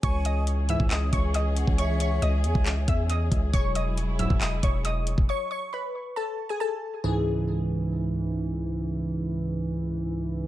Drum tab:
HH |x-x-x-x-x-x-x-x-|x-x-x-x-x-x-x-x-|x-x-x-x-x-x-x-x-|----------------|
CP |--------x-------|--------x-------|--------x-------|----------------|
BD |o------o--o----o|-------o--o---o-|o------o--o----o|----------------|

HH |----------------|----------------|
CP |----------------|----------------|
BD |----------------|----------------|